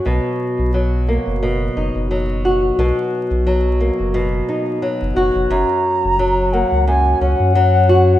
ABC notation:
X:1
M:4/4
L:1/16
Q:"Swing 16ths" 1/4=88
K:Blyd
V:1 name="Flute"
z16 | z16 | a6 f2 g2 f6 |]
V:2 name="Nylon-string guitar" clef=bass
B,,4 F,2 A,2 B,,2 D2 F,2 F2 | B,,4 F,2 A,2 B,,2 D2 F,2 F2 | F,,4 F,2 A,2 F,,2 C2 F,2 F2 |]
V:3 name="Sub bass" clef=bass
B,,, z2 B,,,4 F,,,3 F,,, F,,,4- F,,, | B,,, z2 B,,,4 F,,,3 z3 F,,, F,,, F,,, | F,,, z2 F,,,4 C,,3 C,, F,,4- F,, |]